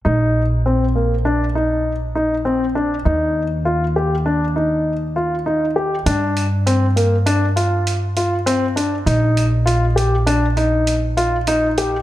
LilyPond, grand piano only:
\new Staff \with { instrumentName = "Grand piano" } { \time 5/4 \key bes \major \tempo 4 = 100 ees'4 c'8 bes8 d'8 ees'4 ees'8 c'8 d'8 | ees'4 f'8 g'8 d'8 ees'4 f'8 ees'8 g'8 | d'4 c'8 bes8 d'8 f'4 f'8 c'8 d'8 | ees'4 f'8 g'8 d'8 ees'4 f'8 ees'8 g'8 | }